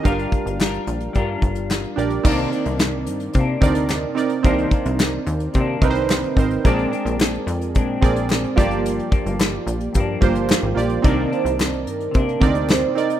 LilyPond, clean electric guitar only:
\new Staff \with { instrumentName = "Clean electric guitar" } { \time 4/4 \key c \minor \tempo 4 = 109 <g d' f' bes'>4 <g d' f' bes'>4 <g d' f' bes'>2 | <c ees bes d'>8 <ees bes d'>4. <c bes d'>2 | <c ees bes d'>8 <ees bes d'>4. <c ees bes d'>2 | <bes, aes c' d'>8 <aes c' d'>4. <bes, aes c' d'>4. <g, f bes d'>8~ |
<g, f bes d'>8 <f bes d'>4. <g, f bes d'>2 | <c ees bes d'>8 <ees bes d'>4. <c bes d'>2 | }